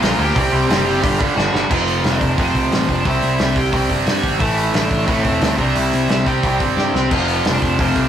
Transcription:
0.01 picked electric bass A#1, distorted electric guitar A#2 F3 A#3, lead electric guitar F4 F5, snare, open hi-hat
0.18 picked electric bass D2, distorted electric guitar A#2 F3 A#3, lead electric guitar G4 G5
0.35 picked electric bass C2, distorted electric guitar C3 G3 C4, kick, open hi-hat
0.53 picked electric bass C2, distorted electric guitar C3 G3 C4
0.70 picked electric bass F#1, distorted electric guitar C3 G3 C4, snare, open hi-hat
0.86 distorted electric guitar C3 G3 C4
1.03 picked electric bass G1, distorted electric guitar G2 D3 G3, kick, open hi-hat
1.19 distorted electric guitar G2 D3 G3, kick
1.36 picked electric bass G1, distorted electric guitar G2 D3 G3, lead electric guitar F#4 F#5, snare
1.53 picked electric bass G1, distorted electric guitar G2 D3 G3, snare
1.70 picked electric bass F1, distorted electric guitar F2 C3 F3, lead electric guitar F4 F5, kick, crash
1.88 open hi-hat
2.04 lead electric guitar D4 D5, snare, open hi-hat
2.21 picked electric bass F1, kick, open hi-hat
2.37 picked electric bass F1, distorted electric guitar F2 C3 F3, lead electric guitar C4 C5, kick, open hi-hat
2.55 picked electric bass C2, kick, open hi-hat
2.72 picked electric bass A1, snare, open hi-hat
2.77 lead electric guitar B4
2.88 picked electric bass F1, lead electric guitar D4 D5, kick, open hi-hat
3.05 picked electric bass C2, distorted electric guitar C3 G3 C4, lead electric guitar E4 E5, kick, open hi-hat
3.22 picked electric bass C2, open hi-hat
3.39 picked electric bass C2, lead electric guitar E4 E5, snare, open hi-hat
3.56 lead electric guitar G4 G5, kick, open hi-hat
3.73 picked electric bass C2, distorted electric guitar C3 G3 C4, kick, open hi-hat
3.90 picked electric bass G1, kick, open hi-hat
4.06 picked electric bass G2, lead electric guitar F#4 F#5, snare, open hi-hat
4.23 picked electric bass G#1, kick, open hi-hat
4.39 picked electric bass A1, distorted electric guitar A2 E3 A3, lead electric guitar E4 E5, kick, open hi-hat
4.57 open hi-hat
4.74 picked electric bass A1, lead electric guitar D4 D5, snare, open hi-hat
4.91 picked electric bass A1, kick, open hi-hat
5.07 picked electric bass A1, distorted electric guitar A2 E3 A3, lead electric guitar C4 C5, kick, open hi-hat
5.25 picked electric bass E1, kick, open hi-hat
5.41 picked electric bass D2, snare, open hi-hat
5.57 picked electric bass C2, distorted electric guitar C3 G3 C4, lead electric guitar D4 D5, kick, open hi-hat
5.75 picked electric bass C2, lead electric guitar E4 E5, open hi-hat
5.93 picked electric bass C2, open hi-hat
6.09 picked electric bass C2, lead electric guitar E4 E5, snare, open hi-hat
6.26 distorted electric guitar C3 G3 C4, lead electric guitar G4 G5, kick, open hi-hat
6.43 picked electric bass C2, kick, open hi-hat
6.60 picked electric bass G1, kick, open hi-hat
6.77 picked electric bass G2, lead electric guitar G4 G5, snare
6.94 picked electric bass C2, snare
7.11 picked electric bass F1, distorted electric guitar F2 C3 F3, lead electric guitar F4 F5, kick, crash
7.28 open hi-hat
7.45 picked electric bass F1, lead electric guitar D4 D5, snare, open hi-hat
7.62 picked electric bass F1, kick, open hi-hat
7.79 picked electric bass F1, distorted electric guitar F2 C3 F3, lead electric guitar C4 C5, kick, open hi-hat
7.96 picked electric bass C2, kick, open hi-hat

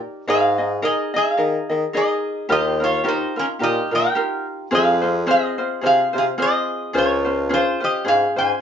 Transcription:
Already playing: ukulele D#4 G4 A#4 D5
0.28 bassoon G#2, ukulele D#4 G#4 A#4 D#5, resonator guitar played with a steel bar G#4 F5
0.58 ukulele D#4 G#4 D#5
0.82 ukulele D#4 G#4 A#4 D#5, resonator guitar played with a steel bar G#4 D#5
1.14 ukulele D#4 G#4 D#5, resonator guitar played with a steel bar G#4 F5
1.37 bassoon D#3, ukulele D#4 G#4 A#4 D#5
1.69 bassoon D#3, ukulele D#4 G#4 D#5
1.93 ukulele D#4 G#4 A#4 D#5, resonator guitar played with a steel bar D#5
1.97 resonator guitar played with a steel bar G#4
2.49 bassoon D#2, ukulele D#4 F4 G4 A#4, resonator guitar played with a steel bar G4 D#5
2.80 ukulele D#4 F4 A#4, resonator guitar played with a steel bar C#5
2.84 resonator guitar played with a steel bar F4
3.04 ukulele D#4 F4 G4 A#4
3.08 resonator guitar played with a steel bar D#4 C5
3.36 resonator guitar played with a steel bar C#4 A#4, ukulele D#4 F4 A#4
3.59 bassoon A#2, ukulele D#4 F4 G4 A#4
3.63 resonator guitar played with a steel bar G4 D#5
3.91 bassoon A#2, ukulele D#4 F4 A#4, resonator guitar played with a steel bar A#4
3.95 resonator guitar played with a steel bar G5
4.15 ukulele D#4 F4 G4 A#4
4.71 bassoon F2, ukulele C4 F4 G#4 C5, resonator guitar played with a steel bar G#4 F5
5.02 ukulele C4 F4 C5
5.27 ukulele C4 F4 G#4 C5, resonator guitar played with a steel bar G#4
5.31 resonator guitar played with a steel bar D#5
5.58 ukulele C4 F4 C5
5.81 bassoon C3, ukulele C4 F4 G#4 C5
5.86 resonator guitar played with a steel bar G#4 F5
6.13 bassoon C3, ukulele C4 F4 C5
6.18 resonator guitar played with a steel bar G#4 F5
6.38 ukulele C4 F4 G#4 C5
6.42 resonator guitar played with a steel bar G#4 D#5
6.93 bassoon C#2, ukulele C#4 F4 G#4 C5
6.98 resonator guitar played with a steel bar F4 C#5
7.25 ukulele C#4 F4 C5
7.49 ukulele C#4 F4 G#4 C5
7.54 resonator guitar played with a steel bar F4 C5
7.80 ukulele C#4 F4 C5, resonator guitar played with a steel bar G4
7.84 resonator guitar played with a steel bar D#5
8.05 bassoon G#2, ukulele C#4 F4 G#4 C5, resonator guitar played with a steel bar G#4 F5
8.36 bassoon G#2, ukulele C#4 F4 C5, resonator guitar played with a steel bar C5 G#5

